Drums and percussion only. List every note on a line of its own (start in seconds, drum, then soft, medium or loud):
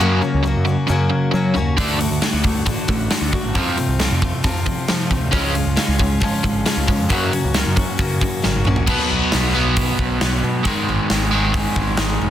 1.78 kick loud
1.78 open hi-hat medium
2.01 open hi-hat medium
2.22 snare medium
2.22 open hi-hat medium
2.44 kick medium
2.44 open hi-hat medium
2.67 kick loud
2.67 open hi-hat medium
2.88 kick medium
2.88 open hi-hat soft
3.11 snare loud
3.11 open hi-hat medium
3.33 kick medium
3.33 open hi-hat soft
3.55 kick loud
3.55 open hi-hat medium
3.78 open hi-hat soft
4.00 snare loud
4.00 open hi-hat medium
4.22 kick medium
4.22 open hi-hat soft
4.44 kick loud
4.44 open hi-hat medium
4.66 kick medium
4.66 open hi-hat soft
4.88 snare loud
4.88 open hi-hat medium
5.11 kick medium
5.11 open hi-hat soft
5.33 kick loud
5.33 open hi-hat medium
5.55 open hi-hat soft
5.77 snare loud
5.77 open hi-hat medium
5.99 kick medium
5.99 open hi-hat soft
6.21 kick loud
6.21 open hi-hat medium
6.44 kick medium
6.44 open hi-hat soft
6.66 snare loud
6.66 open hi-hat medium
6.88 kick medium
6.88 open hi-hat soft
7.10 kick loud
7.10 open hi-hat medium
7.33 open hi-hat medium
7.54 snare loud
7.54 open hi-hat medium
7.77 kick medium
7.77 open hi-hat soft
7.99 kick loud
7.99 open hi-hat medium
8.21 kick medium
8.21 open hi-hat soft
8.43 snare medium
8.65 mid tom medium
8.76 floor tom medium
8.87 kick loud
8.87 crash loud
8.99 snare soft
9.32 snare medium
9.32 open hi-hat medium
9.77 kick loud
9.77 open hi-hat medium
9.99 kick medium
10.21 snare medium
10.21 open hi-hat soft
10.65 kick loud
10.65 open hi-hat soft
11.10 snare loud
11.10 open hi-hat soft
11.54 kick loud
11.54 open hi-hat soft
11.76 kick medium
11.97 snare loud
11.97 open hi-hat soft